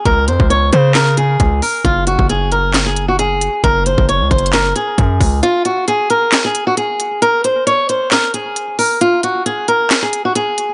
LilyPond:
<<
  \new Staff \with { instrumentName = "Steel-string acoustic guitar" } { \time 4/4 \key ges \lydian \tempo 4 = 134 bes'8 c''8 des''8 c''8 bes'8 aes'4 bes'8 | f'8 ges'8 aes'8 bes'8. aes'8 ges'16 aes'4 | bes'8 c''8 des''8 c''8 bes'8 aes'4. | f'8 ges'8 aes'8 bes'8. aes'8 ges'16 aes'4 |
bes'8 c''8 des''8 c''8 bes'8 aes'4 bes'8 | f'8 ges'8 aes'8 bes'8. aes'8 ges'16 aes'4 | }
  \new Staff \with { instrumentName = "808-style bass" } { \clef bass \time 4/4 \key ges \lydian des,8 f,16 des,8. des4. des,8 r8 | ges,,8. ges,,2. r16 | ges,,8. ges,,8 des,16 ges,,4 r8 ges,8 des,8 | r1 |
r1 | r1 | }
  \new DrumStaff \with { instrumentName = "Drums" } \drummode { \time 4/4 <hh bd>8 hh16 bd16 hh8 hh8 <hc hh sn>8 hh8 <hh bd>8 hho8 | <hh bd>8 hh16 bd16 hh8 hh8 <hc hh sn>8 hh8 hh8 hh8 | <hh bd>8 hh16 bd16 \tuplet 3/2 { hh16 r16 r16 <hh bd>16 hh16 hh16 } <hc hh sn>8 hh8 <hh bd>8 <hho bd>8 | hh8 hh8 hh8 hh8 <hc hh sn>8 hh8 hh8 hh8 |
hh8 hh8 hh8 hh8 <hc hh sn>8 hh8 hh8 hho8 | hh8 hh8 hh8 hh8 <hc hh sn>8 hh8 hh8 hh8 | }
>>